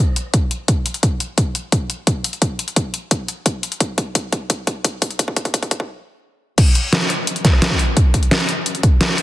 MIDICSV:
0, 0, Header, 1, 2, 480
1, 0, Start_track
1, 0, Tempo, 346821
1, 1426, Time_signature, 4, 2, 24, 8
1, 12765, End_track
2, 0, Start_track
2, 0, Title_t, "Drums"
2, 225, Note_on_c, 9, 42, 62
2, 363, Note_off_c, 9, 42, 0
2, 465, Note_on_c, 9, 36, 96
2, 465, Note_on_c, 9, 42, 90
2, 603, Note_off_c, 9, 42, 0
2, 604, Note_off_c, 9, 36, 0
2, 705, Note_on_c, 9, 42, 59
2, 843, Note_off_c, 9, 42, 0
2, 945, Note_on_c, 9, 36, 95
2, 945, Note_on_c, 9, 42, 92
2, 1083, Note_off_c, 9, 42, 0
2, 1084, Note_off_c, 9, 36, 0
2, 1185, Note_on_c, 9, 46, 80
2, 1305, Note_on_c, 9, 42, 36
2, 1324, Note_off_c, 9, 46, 0
2, 1425, Note_off_c, 9, 42, 0
2, 1425, Note_on_c, 9, 36, 103
2, 1425, Note_on_c, 9, 42, 89
2, 1564, Note_off_c, 9, 36, 0
2, 1564, Note_off_c, 9, 42, 0
2, 1665, Note_on_c, 9, 42, 62
2, 1803, Note_off_c, 9, 42, 0
2, 1905, Note_on_c, 9, 36, 103
2, 1905, Note_on_c, 9, 42, 92
2, 2043, Note_off_c, 9, 42, 0
2, 2044, Note_off_c, 9, 36, 0
2, 2145, Note_on_c, 9, 42, 64
2, 2283, Note_off_c, 9, 42, 0
2, 2385, Note_on_c, 9, 36, 102
2, 2385, Note_on_c, 9, 42, 87
2, 2523, Note_off_c, 9, 42, 0
2, 2524, Note_off_c, 9, 36, 0
2, 2625, Note_on_c, 9, 42, 60
2, 2763, Note_off_c, 9, 42, 0
2, 2865, Note_on_c, 9, 36, 104
2, 2865, Note_on_c, 9, 42, 91
2, 3004, Note_off_c, 9, 36, 0
2, 3004, Note_off_c, 9, 42, 0
2, 3105, Note_on_c, 9, 46, 82
2, 3225, Note_on_c, 9, 42, 37
2, 3244, Note_off_c, 9, 46, 0
2, 3345, Note_off_c, 9, 42, 0
2, 3345, Note_on_c, 9, 36, 105
2, 3345, Note_on_c, 9, 42, 91
2, 3484, Note_off_c, 9, 36, 0
2, 3484, Note_off_c, 9, 42, 0
2, 3586, Note_on_c, 9, 42, 67
2, 3706, Note_off_c, 9, 42, 0
2, 3706, Note_on_c, 9, 42, 36
2, 3825, Note_off_c, 9, 42, 0
2, 3825, Note_on_c, 9, 36, 105
2, 3825, Note_on_c, 9, 42, 97
2, 3964, Note_off_c, 9, 36, 0
2, 3964, Note_off_c, 9, 42, 0
2, 4065, Note_on_c, 9, 42, 66
2, 4204, Note_off_c, 9, 42, 0
2, 4305, Note_on_c, 9, 36, 103
2, 4305, Note_on_c, 9, 42, 94
2, 4444, Note_off_c, 9, 36, 0
2, 4444, Note_off_c, 9, 42, 0
2, 4545, Note_on_c, 9, 42, 62
2, 4683, Note_off_c, 9, 42, 0
2, 4785, Note_on_c, 9, 42, 93
2, 4786, Note_on_c, 9, 36, 108
2, 4924, Note_off_c, 9, 36, 0
2, 4924, Note_off_c, 9, 42, 0
2, 5025, Note_on_c, 9, 46, 85
2, 5145, Note_on_c, 9, 42, 37
2, 5164, Note_off_c, 9, 46, 0
2, 5265, Note_off_c, 9, 42, 0
2, 5265, Note_on_c, 9, 42, 98
2, 5266, Note_on_c, 9, 36, 105
2, 5404, Note_off_c, 9, 36, 0
2, 5404, Note_off_c, 9, 42, 0
2, 5506, Note_on_c, 9, 36, 106
2, 5506, Note_on_c, 9, 42, 65
2, 5644, Note_off_c, 9, 36, 0
2, 5644, Note_off_c, 9, 42, 0
2, 5746, Note_on_c, 9, 36, 106
2, 5746, Note_on_c, 9, 42, 104
2, 5884, Note_off_c, 9, 36, 0
2, 5884, Note_off_c, 9, 42, 0
2, 5986, Note_on_c, 9, 36, 104
2, 5986, Note_on_c, 9, 42, 68
2, 6124, Note_off_c, 9, 36, 0
2, 6124, Note_off_c, 9, 42, 0
2, 6226, Note_on_c, 9, 36, 100
2, 6226, Note_on_c, 9, 42, 94
2, 6364, Note_off_c, 9, 36, 0
2, 6364, Note_off_c, 9, 42, 0
2, 6466, Note_on_c, 9, 36, 107
2, 6466, Note_on_c, 9, 42, 67
2, 6604, Note_off_c, 9, 36, 0
2, 6604, Note_off_c, 9, 42, 0
2, 6705, Note_on_c, 9, 42, 96
2, 6706, Note_on_c, 9, 36, 110
2, 6844, Note_off_c, 9, 36, 0
2, 6844, Note_off_c, 9, 42, 0
2, 6946, Note_on_c, 9, 36, 110
2, 6946, Note_on_c, 9, 46, 81
2, 7066, Note_on_c, 9, 42, 40
2, 7084, Note_off_c, 9, 36, 0
2, 7084, Note_off_c, 9, 46, 0
2, 7185, Note_off_c, 9, 42, 0
2, 7185, Note_on_c, 9, 42, 99
2, 7186, Note_on_c, 9, 36, 105
2, 7306, Note_off_c, 9, 36, 0
2, 7306, Note_on_c, 9, 36, 91
2, 7324, Note_off_c, 9, 42, 0
2, 7425, Note_off_c, 9, 36, 0
2, 7425, Note_on_c, 9, 36, 108
2, 7425, Note_on_c, 9, 42, 69
2, 7545, Note_off_c, 9, 36, 0
2, 7545, Note_off_c, 9, 42, 0
2, 7545, Note_on_c, 9, 36, 93
2, 7545, Note_on_c, 9, 42, 39
2, 7665, Note_off_c, 9, 42, 0
2, 7665, Note_on_c, 9, 42, 101
2, 7666, Note_off_c, 9, 36, 0
2, 7666, Note_on_c, 9, 36, 110
2, 7785, Note_off_c, 9, 36, 0
2, 7785, Note_on_c, 9, 36, 93
2, 7786, Note_off_c, 9, 42, 0
2, 7786, Note_on_c, 9, 42, 38
2, 7905, Note_off_c, 9, 36, 0
2, 7905, Note_off_c, 9, 42, 0
2, 7905, Note_on_c, 9, 36, 109
2, 7905, Note_on_c, 9, 42, 72
2, 8025, Note_off_c, 9, 36, 0
2, 8025, Note_on_c, 9, 36, 98
2, 8044, Note_off_c, 9, 42, 0
2, 8164, Note_off_c, 9, 36, 0
2, 9105, Note_on_c, 9, 36, 127
2, 9105, Note_on_c, 9, 42, 96
2, 9105, Note_on_c, 9, 49, 104
2, 9244, Note_off_c, 9, 36, 0
2, 9244, Note_off_c, 9, 42, 0
2, 9244, Note_off_c, 9, 49, 0
2, 9346, Note_on_c, 9, 42, 69
2, 9484, Note_off_c, 9, 42, 0
2, 9585, Note_on_c, 9, 38, 125
2, 9585, Note_on_c, 9, 42, 100
2, 9705, Note_off_c, 9, 42, 0
2, 9705, Note_on_c, 9, 42, 37
2, 9724, Note_off_c, 9, 38, 0
2, 9825, Note_off_c, 9, 42, 0
2, 9825, Note_on_c, 9, 37, 38
2, 9825, Note_on_c, 9, 42, 72
2, 9964, Note_off_c, 9, 37, 0
2, 9964, Note_off_c, 9, 42, 0
2, 10065, Note_on_c, 9, 42, 100
2, 10185, Note_off_c, 9, 42, 0
2, 10185, Note_on_c, 9, 42, 39
2, 10305, Note_on_c, 9, 36, 105
2, 10306, Note_off_c, 9, 42, 0
2, 10306, Note_on_c, 9, 38, 35
2, 10306, Note_on_c, 9, 42, 68
2, 10426, Note_on_c, 9, 37, 36
2, 10444, Note_off_c, 9, 36, 0
2, 10444, Note_off_c, 9, 38, 0
2, 10444, Note_off_c, 9, 42, 0
2, 10545, Note_on_c, 9, 38, 125
2, 10545, Note_on_c, 9, 42, 103
2, 10564, Note_off_c, 9, 37, 0
2, 10665, Note_on_c, 9, 36, 65
2, 10684, Note_off_c, 9, 38, 0
2, 10684, Note_off_c, 9, 42, 0
2, 10786, Note_on_c, 9, 46, 73
2, 10804, Note_off_c, 9, 36, 0
2, 10924, Note_off_c, 9, 46, 0
2, 11025, Note_on_c, 9, 36, 127
2, 11026, Note_on_c, 9, 42, 93
2, 11164, Note_off_c, 9, 36, 0
2, 11164, Note_off_c, 9, 42, 0
2, 11265, Note_on_c, 9, 36, 69
2, 11265, Note_on_c, 9, 42, 70
2, 11386, Note_off_c, 9, 42, 0
2, 11386, Note_on_c, 9, 42, 37
2, 11404, Note_off_c, 9, 36, 0
2, 11506, Note_off_c, 9, 42, 0
2, 11506, Note_on_c, 9, 38, 127
2, 11506, Note_on_c, 9, 42, 95
2, 11626, Note_off_c, 9, 42, 0
2, 11626, Note_on_c, 9, 42, 38
2, 11644, Note_off_c, 9, 38, 0
2, 11746, Note_off_c, 9, 42, 0
2, 11746, Note_on_c, 9, 42, 66
2, 11884, Note_off_c, 9, 42, 0
2, 11986, Note_on_c, 9, 42, 94
2, 12106, Note_off_c, 9, 42, 0
2, 12106, Note_on_c, 9, 42, 37
2, 12226, Note_off_c, 9, 42, 0
2, 12226, Note_on_c, 9, 36, 115
2, 12226, Note_on_c, 9, 42, 68
2, 12364, Note_off_c, 9, 36, 0
2, 12364, Note_off_c, 9, 42, 0
2, 12466, Note_on_c, 9, 38, 127
2, 12466, Note_on_c, 9, 42, 97
2, 12586, Note_on_c, 9, 37, 52
2, 12604, Note_off_c, 9, 38, 0
2, 12604, Note_off_c, 9, 42, 0
2, 12706, Note_on_c, 9, 46, 75
2, 12724, Note_off_c, 9, 37, 0
2, 12765, Note_off_c, 9, 46, 0
2, 12765, End_track
0, 0, End_of_file